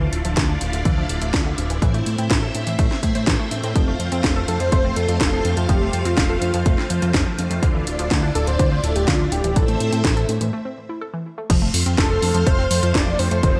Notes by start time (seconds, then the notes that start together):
Already playing: A3 D4 E4 F4 D5
0.01 E3
0.13 D1, closed hi-hat
0.25 D1 F3, closed hi-hat
0.37 D2 A3, kick, snare, closed hi-hat
0.49 D4
0.61 D1, closed hi-hat
0.73 D1 D3, closed hi-hat
0.85 D2 E3, kick, closed hi-hat
0.97 F3
1.09 D1, closed hi-hat
1.22 D1 A3, closed hi-hat
1.34 D2 D4, kick, snare, closed hi-hat
1.46 D3
1.58 D1, closed hi-hat
1.70 D1 E3, closed hi-hat
1.82 A1 E3 A3 C4 C5 E5, kick, closed hi-hat
1.94 A3, closed hi-hat
2.06 A2, closed hi-hat
2.18 A2 C4, closed hi-hat
2.30 A1 E4, kick, snare, closed hi-hat
2.43 A4
2.55 A2, closed hi-hat
2.67 A2 E3, closed hi-hat
2.79 A1 A3, kick, closed hi-hat
2.91 C4, snare
3.03 A2, kick, closed hi-hat
3.15 A2 C5, closed hi-hat
3.27 A1 E3, kick, snare, closed hi-hat
3.39 A3
3.51 A2, closed hi-hat
3.63 A2 C4, closed hi-hat
3.76 F1 F3 F4 F5, kick, closed hi-hat
3.88 A3
4.00 F2, closed hi-hat
4.12 F2 C4, closed hi-hat
4.24 F1 F4, kick, snare, closed hi-hat
4.36 A4
4.48 F2 A4, closed hi-hat
4.60 F2 F3 C5, closed hi-hat
4.72 F1 A3 C5, kick, closed hi-hat
4.85 C4
4.96 F2 A4, closed hi-hat
5.08 F2 F4, closed hi-hat
5.21 F1 A4, kick, snare, closed hi-hat
5.33 F3
5.45 F2, closed hi-hat
5.57 F2 A3 F4, closed hi-hat
5.69 F1 F3 G4, kick, closed hi-hat
5.81 A3
5.93 F2, closed hi-hat
6.05 F2 C4 F4, closed hi-hat
6.17 F1 F4, kick, snare, closed hi-hat
6.30 A4
6.42 F2, closed hi-hat
6.54 F2 F3, closed hi-hat
6.66 F1 A3, kick, closed hi-hat
6.78 C4, snare
6.90 F2, closed hi-hat
7.02 F2 F4, closed hi-hat
7.14 F1 A4, kick, snare, closed hi-hat
7.26 F3
7.38 F2, closed hi-hat
7.50 F2 A3, closed hi-hat
7.63 D2 D3 D4 E4 F4 D5, kick, closed hi-hat
7.75 E3
7.87 D1, closed hi-hat
7.99 D1 F3, closed hi-hat
8.11 D2 A3, kick, snare, closed hi-hat
8.23 D4
8.35 D1 A4, closed hi-hat
8.47 D1 D3 C5, closed hi-hat
8.59 D2 E3 C5, kick, closed hi-hat
8.72 F3
8.84 D1 A4, closed hi-hat
8.96 D1 A3 G4, closed hi-hat
9.08 D2 D4 F4, kick, snare, closed hi-hat
9.20 D3
9.32 D1 G4, closed hi-hat
9.44 D1 E3, closed hi-hat
9.56 A1 E3 C4 A4 C5 E5, kick, closed hi-hat
9.68 A3, closed hi-hat
9.80 A2, closed hi-hat
9.93 A2 C4, closed hi-hat
10.05 A1 E4, kick, snare, closed hi-hat
10.17 A4, closed hi-hat
10.29 A2, closed hi-hat
10.41 A2 E3, closed hi-hat
10.53 A3
10.65 C4
10.89 E4
11.01 A4
11.14 E3
11.38 A3
11.50 F1 F3 A3 C4 F4 C5 F5, kick, closed hi-hat, crash
11.62 A3
11.74 F2, open hi-hat
11.86 F2 C4, closed hi-hat
11.98 F1 F4 A4, kick, snare, closed hi-hat
12.10 A4
12.22 F2, open hi-hat
12.34 F2 F3, closed hi-hat
12.47 F1 A3 C5, kick, closed hi-hat
12.59 C4
12.71 F2 C5, open hi-hat
12.83 F2 F4, closed hi-hat
12.95 F1 A4 D5, kick, snare, closed hi-hat
13.07 F3
13.19 F2 C5, open hi-hat
13.31 F2 A3, closed hi-hat
13.43 F1 D#3 D#4 C5, kick, closed hi-hat
13.55 F3